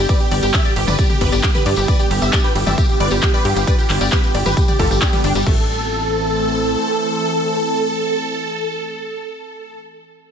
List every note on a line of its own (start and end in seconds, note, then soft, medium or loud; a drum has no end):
0.00 5.43 D3 medium
0.00 5.43 G3 medium
0.00 5.43 B3 medium
0.00 1.85 G4 loud
0.09 0.15 G4 medium
0.09 0.18 B4 medium
0.09 0.18 D5 medium
0.09 0.18 D5 loud
0.09 kick loud
0.09 closed hi-hat loud
0.09 tambourine medium
0.20 0.29 G4 medium
0.20 closed hi-hat soft
0.20 tambourine soft
0.31 0.41 G1 medium
0.31 0.40 G4 medium
0.31 0.37 D5 medium
0.31 open hi-hat loud
0.31 ride medium
0.43 0.52 G1 medium
0.43 0.51 G4 medium
0.43 0.49 G4 medium
0.43 0.51 G4 medium
0.43 closed hi-hat soft
0.43 tambourine medium
0.54 0.62 G4 medium
0.54 0.63 E5 loud
0.54 0.63 E5 medium
0.54 kick loud
0.54 clap loud
0.54 closed hi-hat loud
0.54 tambourine medium
0.65 0.74 G4 medium
0.65 0.71 D5 medium
0.65 closed hi-hat soft
0.65 tambourine soft
0.76 0.85 G1 loud
0.76 0.82 G4 medium
0.76 0.85 G4 medium
0.76 open hi-hat medium
0.76 ride medium
0.87 0.97 G1 medium
0.87 0.96 B4 medium
0.87 0.96 D5 medium
0.87 closed hi-hat soft
0.87 mid tom medium
0.87 tambourine medium
0.99 1.07 G4 medium
0.99 1.05 D5 medium
0.99 kick loud
0.99 closed hi-hat loud
0.99 tambourine medium
1.09 1.18 G4 medium
1.09 1.16 G4 medium
1.09 1.19 G4 medium
1.09 mid tom medium
1.09 tambourine soft
1.21 1.30 G1 loud
1.21 1.30 G4 medium
1.21 1.30 B4 loud
1.21 kick medium
1.21 open hi-hat loud
1.21 ride medium
1.32 1.41 G1 medium
1.32 1.41 G4 medium
1.32 1.38 D5 medium
1.32 closed hi-hat soft
1.32 tambourine medium
1.43 1.49 G4 medium
1.43 1.52 G4 medium
1.43 kick loud
1.43 clap loud
1.43 closed hi-hat loud
1.55 1.63 G4 medium
1.55 1.63 B4 medium
1.55 1.63 B4 loud
1.55 closed hi-hat soft
1.55 mid tom medium
1.55 tambourine soft
1.66 1.75 G2 loud
1.66 1.74 G4 medium
1.66 1.75 G4 medium
1.66 1.72 D5 medium
1.66 open hi-hat medium
1.66 ride medium
1.76 1.86 G1 medium
1.76 1.83 G4 medium
1.76 1.86 G4 medium
1.76 closed hi-hat soft
1.76 tambourine medium
1.88 5.43 F4 medium
1.88 1.97 B4 medium
1.88 1.97 D5 loud
1.88 kick loud
1.88 closed hi-hat loud
1.88 tambourine medium
1.99 2.08 G4 medium
1.99 2.05 D5 medium
1.99 closed hi-hat soft
1.99 tambourine soft
2.11 2.20 G1 medium
2.11 2.19 G4 medium
2.11 2.17 G4 medium
2.11 2.19 G4 medium
2.11 open hi-hat loud
2.11 ride medium
2.22 2.31 G1 medium
2.22 2.30 G4 medium
2.22 2.30 E5 medium
2.22 2.31 E5 medium
2.22 closed hi-hat soft
2.22 tambourine medium
2.33 2.42 G4 medium
2.33 2.39 D5 medium
2.33 kick loud
2.33 clap loud
2.33 closed hi-hat loud
2.33 tambourine medium
2.44 2.50 G4 medium
2.44 2.53 B4 medium
2.44 2.53 G5 medium
2.44 closed hi-hat soft
2.44 tambourine soft
2.55 2.64 G1 loud
2.55 2.64 G4 medium
2.55 open hi-hat medium
2.55 ride medium
2.67 2.76 G1 medium
2.67 2.75 G4 medium
2.67 2.73 D5 medium
2.67 2.75 E5 loud
2.67 closed hi-hat soft
2.67 mid tom medium
2.67 tambourine medium
2.78 2.86 G4 medium
2.78 2.84 G4 medium
2.78 2.86 G4 medium
2.78 kick loud
2.78 closed hi-hat loud
2.78 tambourine medium
2.89 2.98 G4 medium
2.89 tambourine soft
3.00 3.09 G1 loud
3.00 3.09 B4 medium
3.00 3.09 D5 loud
3.00 3.06 D5 medium
3.00 3.09 D5 loud
3.00 open hi-hat loud
3.00 ride medium
3.10 3.20 G1 medium
3.10 3.17 G4 medium
3.10 3.20 G4 medium
3.10 closed hi-hat soft
3.10 tambourine medium
3.23 3.31 G4 medium
3.23 kick loud
3.23 clap loud
3.23 closed hi-hat medium
3.23 tambourine medium
3.34 3.42 G4 medium
3.34 3.42 B4 loud
3.34 3.42 B4 medium
3.34 3.40 D5 medium
3.34 closed hi-hat soft
3.34 tambourine soft
3.45 3.54 G2 loud
3.45 3.51 G4 medium
3.45 3.54 G4 medium
3.45 open hi-hat medium
3.45 ride medium
3.56 3.65 G1 medium
3.56 3.65 G4 medium
3.56 closed hi-hat soft
3.56 tambourine medium
3.67 3.76 G4 medium
3.67 3.76 B4 loud
3.67 3.76 B4 medium
3.67 3.73 D5 medium
3.67 kick loud
3.67 closed hi-hat loud
3.67 tambourine medium
3.78 3.84 G4 medium
3.78 3.87 G4 medium
3.78 closed hi-hat soft
3.78 tambourine soft
3.90 3.99 G1 medium
3.90 3.98 G4 medium
3.90 clap medium
3.90 open hi-hat loud
3.90 ride medium
4.01 4.10 G1 medium
4.01 4.10 G4 medium
4.01 4.07 D5 medium
4.01 closed hi-hat soft
4.01 tambourine medium
4.12 4.18 G4 medium
4.12 4.21 G4 medium
4.12 4.21 B4 loud
4.12 kick loud
4.12 clap loud
4.12 closed hi-hat loud
4.12 tambourine medium
4.23 4.32 G4 medium
4.23 closed hi-hat soft
4.23 tambourine soft
4.34 4.44 G1 loud
4.34 4.43 G4 medium
4.34 4.40 D5 medium
4.34 open hi-hat medium
4.34 ride medium
4.46 4.55 G1 medium
4.46 4.52 G4 medium
4.46 4.54 G4 medium
4.46 4.54 B4 medium
4.46 4.54 B4 loud
4.46 closed hi-hat soft
4.46 mid tom medium
4.46 tambourine medium
4.57 4.66 G4 medium
4.57 kick loud
4.57 closed hi-hat loud
4.57 tambourine medium
4.68 4.77 G4 medium
4.68 4.74 D5 medium
4.68 closed hi-hat soft
4.68 mid tom medium
4.68 tambourine soft
4.79 4.88 G1 loud
4.79 4.88 F4 medium
4.79 4.85 G4 medium
4.79 4.88 A4 loud
4.79 kick medium
4.79 open hi-hat loud
4.79 ride medium
4.90 5.00 G1 medium
4.90 4.99 G4 medium
4.90 closed hi-hat soft
4.90 tambourine medium
5.02 5.08 G3 loud
5.02 5.10 G4 medium
5.02 kick loud
5.02 clap loud
5.02 closed hi-hat loud
5.02 tambourine medium
5.13 5.22 G3 medium
5.13 5.22 B3 medium
5.13 5.21 G4 medium
5.13 5.22 G4 medium
5.13 closed hi-hat soft
5.13 mid tom medium
5.13 tambourine soft
5.24 5.33 G1 loud
5.24 5.33 D4 loud
5.24 5.33 G4 medium
5.24 open hi-hat medium
5.24 ride medium
5.35 5.44 G1 medium
5.35 5.41 G3 loud
5.35 5.44 G4 medium
5.35 closed hi-hat soft
5.35 tambourine medium
5.46 6.77 A1 loud
5.46 9.79 E3 medium
5.46 9.79 A3 medium
5.46 5.67 A3 medium
5.46 9.79 C4 medium
5.46 9.79 A4 medium
5.46 9.79 A4 loud
5.46 kick loud
5.46 crash medium